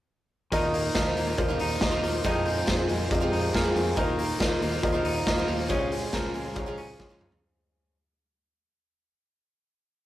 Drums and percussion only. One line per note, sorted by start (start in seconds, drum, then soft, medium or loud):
0.52 kick medium
0.52 closed hi-hat medium
0.74 open hi-hat medium
0.95 kick loud
0.95 snare loud
0.95 closed hi-hat medium
1.17 open hi-hat medium
1.38 kick loud
1.38 closed hi-hat medium
1.59 open hi-hat medium
1.81 kick loud
1.81 snare loud
1.81 closed hi-hat soft
2.03 open hi-hat medium
2.24 kick medium
2.24 closed hi-hat medium
2.46 open hi-hat medium
2.67 kick loud
2.67 snare loud
2.67 closed hi-hat medium
2.89 open hi-hat medium
3.11 kick loud
3.11 closed hi-hat medium
3.33 open hi-hat medium
3.55 kick medium
3.55 snare loud
3.55 closed hi-hat medium
3.76 open hi-hat medium
3.97 kick loud
3.97 closed hi-hat medium
4.19 open hi-hat medium
4.40 kick medium
4.40 snare loud
4.40 closed hi-hat medium
4.62 open hi-hat medium
4.83 kick loud
4.83 closed hi-hat medium
5.05 open hi-hat medium
5.27 kick medium
5.27 snare loud
5.48 open hi-hat medium
5.70 kick medium
5.70 closed hi-hat medium
5.92 open hi-hat medium
6.13 kick loud
6.13 snare loud
6.13 closed hi-hat medium
6.34 open hi-hat medium
6.56 kick loud
6.56 closed hi-hat medium
6.77 open hi-hat medium
7.00 kick medium
7.00 snare medium
7.21 mid tom medium
7.32 floor tom medium